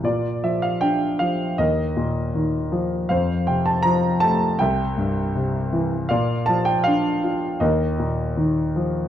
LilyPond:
<<
  \new Staff \with { instrumentName = "Grand piano" } { \time 4/4 \key bes \lydian \tempo 4 = 80 << { d''8 e''16 f''16 g''8 f''8 ees''4. r8 | f''8 g''16 a''16 bes''8 a''8 g''4. r8 | f''8 a''16 g''16 f''4 ees''4. r8 | } \\ { f'2 bes'2 | c''2 e''2 | d''2 bes'2 | } >> }
  \new Staff \with { instrumentName = "Grand piano" } { \clef bass \time 4/4 \key bes \lydian bes,8 f8 d'8 f8 ees,8 bes,8 ees8 f8 | f,8 c8 f8 a8 c,8 g,8 c8 e8 | bes,8 f8 d'8 f'8 ees,8 bes,8 ees8 f8 | }
>>